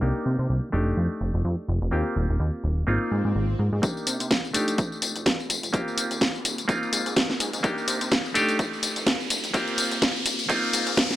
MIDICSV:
0, 0, Header, 1, 6, 480
1, 0, Start_track
1, 0, Tempo, 476190
1, 20, Time_signature, 4, 2, 24, 8
1, 11249, End_track
2, 0, Start_track
2, 0, Title_t, "Clav"
2, 0, Program_c, 0, 7
2, 12, Note_on_c, 0, 58, 77
2, 17, Note_on_c, 0, 62, 65
2, 24, Note_on_c, 0, 63, 68
2, 28, Note_on_c, 0, 67, 79
2, 694, Note_off_c, 0, 58, 0
2, 696, Note_off_c, 0, 62, 0
2, 700, Note_off_c, 0, 63, 0
2, 702, Note_off_c, 0, 67, 0
2, 730, Note_on_c, 0, 57, 83
2, 735, Note_on_c, 0, 62, 80
2, 741, Note_on_c, 0, 63, 76
2, 746, Note_on_c, 0, 67, 91
2, 1893, Note_off_c, 0, 57, 0
2, 1895, Note_off_c, 0, 62, 0
2, 1898, Note_off_c, 0, 63, 0
2, 1901, Note_off_c, 0, 67, 0
2, 1929, Note_on_c, 0, 58, 73
2, 1934, Note_on_c, 0, 60, 67
2, 1940, Note_on_c, 0, 65, 68
2, 1944, Note_on_c, 0, 67, 86
2, 2852, Note_off_c, 0, 58, 0
2, 2855, Note_off_c, 0, 60, 0
2, 2858, Note_off_c, 0, 65, 0
2, 2860, Note_off_c, 0, 67, 0
2, 2891, Note_on_c, 0, 58, 73
2, 2896, Note_on_c, 0, 60, 69
2, 2901, Note_on_c, 0, 63, 68
2, 2906, Note_on_c, 0, 65, 86
2, 3813, Note_off_c, 0, 58, 0
2, 3816, Note_off_c, 0, 60, 0
2, 3818, Note_off_c, 0, 63, 0
2, 3821, Note_off_c, 0, 65, 0
2, 3851, Note_on_c, 0, 58, 76
2, 3857, Note_on_c, 0, 62, 68
2, 3862, Note_on_c, 0, 63, 68
2, 3867, Note_on_c, 0, 67, 80
2, 4533, Note_off_c, 0, 58, 0
2, 4536, Note_off_c, 0, 62, 0
2, 4539, Note_off_c, 0, 63, 0
2, 4541, Note_off_c, 0, 67, 0
2, 4571, Note_on_c, 0, 57, 84
2, 4578, Note_on_c, 0, 62, 82
2, 4582, Note_on_c, 0, 63, 79
2, 4588, Note_on_c, 0, 67, 95
2, 5733, Note_off_c, 0, 57, 0
2, 5737, Note_off_c, 0, 62, 0
2, 5739, Note_off_c, 0, 63, 0
2, 5742, Note_off_c, 0, 67, 0
2, 5772, Note_on_c, 0, 58, 76
2, 5779, Note_on_c, 0, 60, 71
2, 5784, Note_on_c, 0, 65, 68
2, 5790, Note_on_c, 0, 67, 83
2, 6694, Note_off_c, 0, 58, 0
2, 6697, Note_off_c, 0, 60, 0
2, 6700, Note_off_c, 0, 65, 0
2, 6703, Note_off_c, 0, 67, 0
2, 6730, Note_on_c, 0, 58, 80
2, 6736, Note_on_c, 0, 60, 72
2, 6740, Note_on_c, 0, 63, 70
2, 6746, Note_on_c, 0, 65, 87
2, 7653, Note_off_c, 0, 58, 0
2, 7656, Note_off_c, 0, 60, 0
2, 7658, Note_off_c, 0, 63, 0
2, 7661, Note_off_c, 0, 65, 0
2, 7690, Note_on_c, 0, 58, 78
2, 7696, Note_on_c, 0, 62, 72
2, 7700, Note_on_c, 0, 63, 71
2, 7707, Note_on_c, 0, 67, 87
2, 8373, Note_off_c, 0, 58, 0
2, 8376, Note_off_c, 0, 62, 0
2, 8378, Note_off_c, 0, 63, 0
2, 8381, Note_off_c, 0, 67, 0
2, 8411, Note_on_c, 0, 57, 92
2, 8418, Note_on_c, 0, 62, 85
2, 8422, Note_on_c, 0, 63, 83
2, 8428, Note_on_c, 0, 67, 104
2, 9573, Note_off_c, 0, 57, 0
2, 9577, Note_off_c, 0, 62, 0
2, 9579, Note_off_c, 0, 63, 0
2, 9582, Note_off_c, 0, 67, 0
2, 9612, Note_on_c, 0, 58, 80
2, 9618, Note_on_c, 0, 60, 77
2, 9623, Note_on_c, 0, 65, 74
2, 9629, Note_on_c, 0, 67, 85
2, 10534, Note_off_c, 0, 58, 0
2, 10537, Note_off_c, 0, 60, 0
2, 10539, Note_off_c, 0, 65, 0
2, 10542, Note_off_c, 0, 67, 0
2, 10571, Note_on_c, 0, 58, 79
2, 10576, Note_on_c, 0, 60, 74
2, 10581, Note_on_c, 0, 63, 73
2, 10586, Note_on_c, 0, 65, 88
2, 11249, Note_off_c, 0, 58, 0
2, 11249, Note_off_c, 0, 60, 0
2, 11249, Note_off_c, 0, 63, 0
2, 11249, Note_off_c, 0, 65, 0
2, 11249, End_track
3, 0, Start_track
3, 0, Title_t, "Analog synth bass"
3, 0, Program_c, 1, 38
3, 20, Note_on_c, 1, 36, 89
3, 128, Note_off_c, 1, 36, 0
3, 260, Note_on_c, 1, 48, 95
3, 368, Note_off_c, 1, 48, 0
3, 393, Note_on_c, 1, 48, 93
3, 479, Note_off_c, 1, 48, 0
3, 499, Note_on_c, 1, 36, 99
3, 608, Note_off_c, 1, 36, 0
3, 739, Note_on_c, 1, 29, 87
3, 939, Note_off_c, 1, 29, 0
3, 979, Note_on_c, 1, 41, 81
3, 1088, Note_off_c, 1, 41, 0
3, 1219, Note_on_c, 1, 29, 83
3, 1328, Note_off_c, 1, 29, 0
3, 1352, Note_on_c, 1, 29, 90
3, 1439, Note_off_c, 1, 29, 0
3, 1459, Note_on_c, 1, 41, 97
3, 1568, Note_off_c, 1, 41, 0
3, 1698, Note_on_c, 1, 29, 98
3, 1808, Note_off_c, 1, 29, 0
3, 1834, Note_on_c, 1, 29, 91
3, 1919, Note_off_c, 1, 29, 0
3, 1940, Note_on_c, 1, 39, 95
3, 2048, Note_off_c, 1, 39, 0
3, 2180, Note_on_c, 1, 27, 96
3, 2288, Note_off_c, 1, 27, 0
3, 2313, Note_on_c, 1, 27, 90
3, 2399, Note_off_c, 1, 27, 0
3, 2416, Note_on_c, 1, 39, 94
3, 2526, Note_off_c, 1, 39, 0
3, 2658, Note_on_c, 1, 27, 89
3, 2858, Note_off_c, 1, 27, 0
3, 2899, Note_on_c, 1, 32, 85
3, 3008, Note_off_c, 1, 32, 0
3, 3140, Note_on_c, 1, 44, 93
3, 3248, Note_off_c, 1, 44, 0
3, 3275, Note_on_c, 1, 44, 90
3, 3360, Note_off_c, 1, 44, 0
3, 3381, Note_on_c, 1, 32, 83
3, 3580, Note_off_c, 1, 32, 0
3, 3620, Note_on_c, 1, 44, 88
3, 3728, Note_off_c, 1, 44, 0
3, 3756, Note_on_c, 1, 44, 92
3, 3840, Note_off_c, 1, 44, 0
3, 3861, Note_on_c, 1, 36, 93
3, 3969, Note_off_c, 1, 36, 0
3, 4100, Note_on_c, 1, 48, 101
3, 4209, Note_off_c, 1, 48, 0
3, 4237, Note_on_c, 1, 48, 97
3, 4321, Note_off_c, 1, 48, 0
3, 4341, Note_on_c, 1, 36, 96
3, 4449, Note_off_c, 1, 36, 0
3, 4581, Note_on_c, 1, 29, 86
3, 4780, Note_off_c, 1, 29, 0
3, 4821, Note_on_c, 1, 41, 89
3, 4929, Note_off_c, 1, 41, 0
3, 5062, Note_on_c, 1, 29, 84
3, 5169, Note_off_c, 1, 29, 0
3, 5196, Note_on_c, 1, 29, 89
3, 5281, Note_off_c, 1, 29, 0
3, 5301, Note_on_c, 1, 41, 104
3, 5409, Note_off_c, 1, 41, 0
3, 5540, Note_on_c, 1, 29, 103
3, 5648, Note_off_c, 1, 29, 0
3, 5674, Note_on_c, 1, 29, 91
3, 5760, Note_off_c, 1, 29, 0
3, 5782, Note_on_c, 1, 39, 94
3, 5889, Note_off_c, 1, 39, 0
3, 6020, Note_on_c, 1, 27, 98
3, 6129, Note_off_c, 1, 27, 0
3, 6155, Note_on_c, 1, 27, 97
3, 6240, Note_off_c, 1, 27, 0
3, 6262, Note_on_c, 1, 39, 98
3, 6369, Note_off_c, 1, 39, 0
3, 6500, Note_on_c, 1, 27, 89
3, 6699, Note_off_c, 1, 27, 0
3, 6742, Note_on_c, 1, 32, 86
3, 6849, Note_off_c, 1, 32, 0
3, 6980, Note_on_c, 1, 44, 83
3, 7089, Note_off_c, 1, 44, 0
3, 7116, Note_on_c, 1, 44, 90
3, 7201, Note_off_c, 1, 44, 0
3, 7461, Note_on_c, 1, 44, 102
3, 7569, Note_off_c, 1, 44, 0
3, 7595, Note_on_c, 1, 44, 91
3, 7680, Note_off_c, 1, 44, 0
3, 7701, Note_on_c, 1, 36, 94
3, 7809, Note_off_c, 1, 36, 0
3, 7940, Note_on_c, 1, 48, 98
3, 8048, Note_off_c, 1, 48, 0
3, 8075, Note_on_c, 1, 48, 95
3, 8160, Note_off_c, 1, 48, 0
3, 8419, Note_on_c, 1, 29, 90
3, 8619, Note_off_c, 1, 29, 0
3, 8660, Note_on_c, 1, 41, 88
3, 8769, Note_off_c, 1, 41, 0
3, 8900, Note_on_c, 1, 29, 80
3, 9008, Note_off_c, 1, 29, 0
3, 9034, Note_on_c, 1, 29, 92
3, 9120, Note_off_c, 1, 29, 0
3, 9139, Note_on_c, 1, 41, 109
3, 9248, Note_off_c, 1, 41, 0
3, 9379, Note_on_c, 1, 29, 104
3, 9488, Note_off_c, 1, 29, 0
3, 9514, Note_on_c, 1, 29, 92
3, 9599, Note_off_c, 1, 29, 0
3, 9619, Note_on_c, 1, 39, 101
3, 9728, Note_off_c, 1, 39, 0
3, 9860, Note_on_c, 1, 27, 100
3, 9969, Note_off_c, 1, 27, 0
3, 9993, Note_on_c, 1, 27, 97
3, 10079, Note_off_c, 1, 27, 0
3, 10099, Note_on_c, 1, 39, 102
3, 10208, Note_off_c, 1, 39, 0
3, 10342, Note_on_c, 1, 27, 91
3, 10540, Note_off_c, 1, 27, 0
3, 10580, Note_on_c, 1, 32, 86
3, 10688, Note_off_c, 1, 32, 0
3, 10821, Note_on_c, 1, 44, 83
3, 10929, Note_off_c, 1, 44, 0
3, 10954, Note_on_c, 1, 44, 92
3, 11040, Note_off_c, 1, 44, 0
3, 11249, End_track
4, 0, Start_track
4, 0, Title_t, "Riser"
4, 0, Program_c, 2, 103
4, 3861, Note_on_c, 2, 60, 77
4, 11249, Note_off_c, 2, 60, 0
4, 11249, End_track
5, 0, Start_track
5, 0, Title_t, "Swell"
5, 0, Program_c, 3, 103
5, 2900, Note_on_c, 3, 60, 71
5, 3860, Note_off_c, 3, 60, 0
5, 11249, End_track
6, 0, Start_track
6, 0, Title_t, "Drums"
6, 3860, Note_on_c, 9, 42, 65
6, 3861, Note_on_c, 9, 36, 105
6, 3866, Note_on_c, 9, 54, 42
6, 3961, Note_off_c, 9, 42, 0
6, 3962, Note_off_c, 9, 36, 0
6, 3967, Note_off_c, 9, 54, 0
6, 4001, Note_on_c, 9, 54, 20
6, 4101, Note_on_c, 9, 46, 100
6, 4102, Note_off_c, 9, 54, 0
6, 4106, Note_on_c, 9, 54, 74
6, 4201, Note_off_c, 9, 46, 0
6, 4207, Note_off_c, 9, 54, 0
6, 4236, Note_on_c, 9, 42, 52
6, 4242, Note_on_c, 9, 54, 30
6, 4337, Note_off_c, 9, 42, 0
6, 4341, Note_on_c, 9, 36, 98
6, 4342, Note_on_c, 9, 38, 118
6, 4342, Note_on_c, 9, 42, 61
6, 4343, Note_off_c, 9, 54, 0
6, 4348, Note_on_c, 9, 54, 42
6, 4442, Note_off_c, 9, 36, 0
6, 4443, Note_off_c, 9, 38, 0
6, 4443, Note_off_c, 9, 42, 0
6, 4448, Note_off_c, 9, 54, 0
6, 4482, Note_on_c, 9, 54, 21
6, 4581, Note_on_c, 9, 46, 104
6, 4583, Note_off_c, 9, 54, 0
6, 4587, Note_on_c, 9, 54, 75
6, 4681, Note_off_c, 9, 46, 0
6, 4687, Note_off_c, 9, 54, 0
6, 4716, Note_on_c, 9, 42, 52
6, 4722, Note_on_c, 9, 54, 31
6, 4817, Note_off_c, 9, 42, 0
6, 4819, Note_on_c, 9, 42, 64
6, 4821, Note_on_c, 9, 36, 118
6, 4823, Note_off_c, 9, 54, 0
6, 4825, Note_on_c, 9, 54, 40
6, 4920, Note_off_c, 9, 42, 0
6, 4922, Note_off_c, 9, 36, 0
6, 4926, Note_off_c, 9, 54, 0
6, 4961, Note_on_c, 9, 54, 21
6, 5060, Note_on_c, 9, 46, 101
6, 5062, Note_off_c, 9, 54, 0
6, 5066, Note_on_c, 9, 54, 74
6, 5161, Note_off_c, 9, 46, 0
6, 5167, Note_off_c, 9, 54, 0
6, 5197, Note_on_c, 9, 42, 49
6, 5203, Note_on_c, 9, 54, 31
6, 5298, Note_off_c, 9, 42, 0
6, 5302, Note_on_c, 9, 36, 95
6, 5303, Note_on_c, 9, 42, 66
6, 5304, Note_off_c, 9, 54, 0
6, 5304, Note_on_c, 9, 38, 114
6, 5309, Note_on_c, 9, 54, 43
6, 5403, Note_off_c, 9, 36, 0
6, 5404, Note_off_c, 9, 38, 0
6, 5404, Note_off_c, 9, 42, 0
6, 5410, Note_off_c, 9, 54, 0
6, 5444, Note_on_c, 9, 54, 21
6, 5543, Note_on_c, 9, 46, 98
6, 5545, Note_off_c, 9, 54, 0
6, 5549, Note_on_c, 9, 54, 75
6, 5644, Note_off_c, 9, 46, 0
6, 5650, Note_off_c, 9, 54, 0
6, 5679, Note_on_c, 9, 42, 52
6, 5685, Note_on_c, 9, 54, 33
6, 5779, Note_off_c, 9, 42, 0
6, 5782, Note_on_c, 9, 36, 111
6, 5784, Note_on_c, 9, 42, 62
6, 5785, Note_off_c, 9, 54, 0
6, 5789, Note_on_c, 9, 54, 42
6, 5883, Note_off_c, 9, 36, 0
6, 5884, Note_off_c, 9, 42, 0
6, 5890, Note_off_c, 9, 54, 0
6, 5925, Note_on_c, 9, 54, 19
6, 6024, Note_on_c, 9, 46, 105
6, 6026, Note_off_c, 9, 54, 0
6, 6029, Note_on_c, 9, 54, 73
6, 6124, Note_off_c, 9, 46, 0
6, 6130, Note_off_c, 9, 54, 0
6, 6158, Note_on_c, 9, 42, 50
6, 6164, Note_on_c, 9, 54, 31
6, 6259, Note_off_c, 9, 42, 0
6, 6262, Note_on_c, 9, 36, 105
6, 6264, Note_off_c, 9, 54, 0
6, 6264, Note_on_c, 9, 42, 62
6, 6265, Note_on_c, 9, 38, 119
6, 6270, Note_on_c, 9, 54, 40
6, 6363, Note_off_c, 9, 36, 0
6, 6365, Note_off_c, 9, 42, 0
6, 6366, Note_off_c, 9, 38, 0
6, 6371, Note_off_c, 9, 54, 0
6, 6403, Note_on_c, 9, 54, 21
6, 6502, Note_on_c, 9, 46, 109
6, 6504, Note_off_c, 9, 54, 0
6, 6508, Note_on_c, 9, 54, 72
6, 6603, Note_off_c, 9, 46, 0
6, 6608, Note_off_c, 9, 54, 0
6, 6636, Note_on_c, 9, 42, 53
6, 6642, Note_on_c, 9, 54, 32
6, 6737, Note_off_c, 9, 42, 0
6, 6742, Note_on_c, 9, 36, 123
6, 6742, Note_on_c, 9, 42, 60
6, 6743, Note_off_c, 9, 54, 0
6, 6748, Note_on_c, 9, 54, 41
6, 6843, Note_off_c, 9, 36, 0
6, 6843, Note_off_c, 9, 42, 0
6, 6849, Note_off_c, 9, 54, 0
6, 6883, Note_on_c, 9, 54, 20
6, 6983, Note_on_c, 9, 46, 106
6, 6984, Note_off_c, 9, 54, 0
6, 6988, Note_on_c, 9, 54, 72
6, 7083, Note_off_c, 9, 46, 0
6, 7089, Note_off_c, 9, 54, 0
6, 7118, Note_on_c, 9, 42, 49
6, 7124, Note_on_c, 9, 54, 30
6, 7219, Note_off_c, 9, 42, 0
6, 7222, Note_on_c, 9, 36, 101
6, 7223, Note_on_c, 9, 42, 64
6, 7224, Note_on_c, 9, 38, 126
6, 7225, Note_off_c, 9, 54, 0
6, 7229, Note_on_c, 9, 54, 41
6, 7322, Note_off_c, 9, 36, 0
6, 7324, Note_off_c, 9, 42, 0
6, 7325, Note_off_c, 9, 38, 0
6, 7330, Note_off_c, 9, 54, 0
6, 7356, Note_on_c, 9, 38, 38
6, 7362, Note_on_c, 9, 54, 20
6, 7457, Note_off_c, 9, 38, 0
6, 7462, Note_off_c, 9, 54, 0
6, 7462, Note_on_c, 9, 46, 101
6, 7467, Note_on_c, 9, 54, 71
6, 7562, Note_off_c, 9, 46, 0
6, 7568, Note_off_c, 9, 54, 0
6, 7594, Note_on_c, 9, 42, 54
6, 7600, Note_on_c, 9, 54, 33
6, 7695, Note_off_c, 9, 42, 0
6, 7700, Note_on_c, 9, 42, 63
6, 7701, Note_off_c, 9, 54, 0
6, 7702, Note_on_c, 9, 36, 116
6, 7706, Note_on_c, 9, 54, 39
6, 7801, Note_off_c, 9, 42, 0
6, 7802, Note_off_c, 9, 36, 0
6, 7807, Note_off_c, 9, 54, 0
6, 7841, Note_on_c, 9, 54, 20
6, 7940, Note_on_c, 9, 46, 108
6, 7941, Note_off_c, 9, 54, 0
6, 7946, Note_on_c, 9, 54, 73
6, 8041, Note_off_c, 9, 46, 0
6, 8047, Note_off_c, 9, 54, 0
6, 8076, Note_on_c, 9, 42, 50
6, 8082, Note_on_c, 9, 54, 31
6, 8177, Note_off_c, 9, 42, 0
6, 8181, Note_on_c, 9, 36, 106
6, 8182, Note_on_c, 9, 38, 117
6, 8182, Note_on_c, 9, 42, 60
6, 8183, Note_off_c, 9, 54, 0
6, 8188, Note_on_c, 9, 54, 42
6, 8281, Note_off_c, 9, 36, 0
6, 8282, Note_off_c, 9, 42, 0
6, 8283, Note_off_c, 9, 38, 0
6, 8288, Note_off_c, 9, 54, 0
6, 8322, Note_on_c, 9, 54, 21
6, 8420, Note_on_c, 9, 46, 114
6, 8423, Note_off_c, 9, 54, 0
6, 8426, Note_on_c, 9, 54, 74
6, 8521, Note_off_c, 9, 46, 0
6, 8527, Note_off_c, 9, 54, 0
6, 8554, Note_on_c, 9, 42, 53
6, 8560, Note_on_c, 9, 54, 32
6, 8654, Note_off_c, 9, 42, 0
6, 8660, Note_off_c, 9, 54, 0
6, 8660, Note_on_c, 9, 42, 61
6, 8661, Note_on_c, 9, 36, 127
6, 8665, Note_on_c, 9, 54, 40
6, 8760, Note_off_c, 9, 42, 0
6, 8761, Note_off_c, 9, 36, 0
6, 8766, Note_off_c, 9, 54, 0
6, 8801, Note_on_c, 9, 54, 20
6, 8899, Note_on_c, 9, 46, 109
6, 8902, Note_off_c, 9, 54, 0
6, 8905, Note_on_c, 9, 54, 75
6, 9000, Note_off_c, 9, 46, 0
6, 9006, Note_off_c, 9, 54, 0
6, 9033, Note_on_c, 9, 42, 47
6, 9039, Note_on_c, 9, 54, 30
6, 9134, Note_off_c, 9, 42, 0
6, 9138, Note_on_c, 9, 38, 122
6, 9138, Note_on_c, 9, 42, 64
6, 9140, Note_off_c, 9, 54, 0
6, 9140, Note_on_c, 9, 36, 105
6, 9143, Note_on_c, 9, 54, 43
6, 9238, Note_off_c, 9, 42, 0
6, 9239, Note_off_c, 9, 38, 0
6, 9241, Note_off_c, 9, 36, 0
6, 9244, Note_off_c, 9, 54, 0
6, 9278, Note_on_c, 9, 54, 21
6, 9378, Note_on_c, 9, 46, 105
6, 9379, Note_off_c, 9, 54, 0
6, 9384, Note_on_c, 9, 54, 75
6, 9478, Note_off_c, 9, 46, 0
6, 9484, Note_off_c, 9, 54, 0
6, 9512, Note_on_c, 9, 42, 52
6, 9518, Note_on_c, 9, 54, 32
6, 9613, Note_off_c, 9, 42, 0
6, 9617, Note_on_c, 9, 42, 62
6, 9619, Note_off_c, 9, 54, 0
6, 9620, Note_on_c, 9, 36, 113
6, 9623, Note_on_c, 9, 54, 42
6, 9718, Note_off_c, 9, 42, 0
6, 9720, Note_off_c, 9, 36, 0
6, 9724, Note_off_c, 9, 54, 0
6, 9754, Note_on_c, 9, 42, 33
6, 9760, Note_on_c, 9, 54, 20
6, 9855, Note_off_c, 9, 42, 0
6, 9858, Note_on_c, 9, 46, 107
6, 9860, Note_off_c, 9, 54, 0
6, 9864, Note_on_c, 9, 54, 80
6, 9958, Note_off_c, 9, 46, 0
6, 9964, Note_off_c, 9, 54, 0
6, 9993, Note_on_c, 9, 42, 48
6, 9999, Note_on_c, 9, 54, 32
6, 10094, Note_off_c, 9, 42, 0
6, 10100, Note_off_c, 9, 54, 0
6, 10100, Note_on_c, 9, 36, 108
6, 10100, Note_on_c, 9, 38, 116
6, 10100, Note_on_c, 9, 42, 62
6, 10106, Note_on_c, 9, 54, 41
6, 10201, Note_off_c, 9, 36, 0
6, 10201, Note_off_c, 9, 38, 0
6, 10201, Note_off_c, 9, 42, 0
6, 10207, Note_off_c, 9, 54, 0
6, 10240, Note_on_c, 9, 54, 22
6, 10338, Note_on_c, 9, 46, 113
6, 10340, Note_off_c, 9, 54, 0
6, 10344, Note_on_c, 9, 54, 80
6, 10439, Note_off_c, 9, 46, 0
6, 10445, Note_off_c, 9, 54, 0
6, 10473, Note_on_c, 9, 42, 50
6, 10478, Note_on_c, 9, 54, 34
6, 10573, Note_off_c, 9, 42, 0
6, 10579, Note_off_c, 9, 54, 0
6, 10579, Note_on_c, 9, 42, 60
6, 10580, Note_on_c, 9, 36, 126
6, 10585, Note_on_c, 9, 54, 42
6, 10680, Note_off_c, 9, 42, 0
6, 10681, Note_off_c, 9, 36, 0
6, 10686, Note_off_c, 9, 54, 0
6, 10720, Note_on_c, 9, 54, 22
6, 10820, Note_on_c, 9, 46, 109
6, 10821, Note_off_c, 9, 54, 0
6, 10826, Note_on_c, 9, 54, 78
6, 10921, Note_off_c, 9, 46, 0
6, 10927, Note_off_c, 9, 54, 0
6, 10954, Note_on_c, 9, 42, 49
6, 10960, Note_on_c, 9, 54, 31
6, 11055, Note_off_c, 9, 42, 0
6, 11061, Note_off_c, 9, 54, 0
6, 11061, Note_on_c, 9, 36, 102
6, 11061, Note_on_c, 9, 42, 63
6, 11062, Note_on_c, 9, 38, 117
6, 11067, Note_on_c, 9, 54, 43
6, 11162, Note_off_c, 9, 36, 0
6, 11162, Note_off_c, 9, 42, 0
6, 11163, Note_off_c, 9, 38, 0
6, 11168, Note_off_c, 9, 54, 0
6, 11194, Note_on_c, 9, 42, 33
6, 11195, Note_on_c, 9, 38, 35
6, 11200, Note_on_c, 9, 54, 22
6, 11249, Note_off_c, 9, 38, 0
6, 11249, Note_off_c, 9, 42, 0
6, 11249, Note_off_c, 9, 54, 0
6, 11249, End_track
0, 0, End_of_file